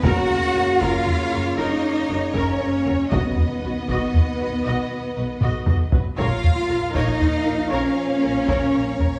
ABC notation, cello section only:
X:1
M:12/8
L:1/8
Q:3/8=78
K:Bbphr
V:1 name="Cello section"
G3 F3 E3 D3 | =B,8- B,3 z | F3 E3 D6 |]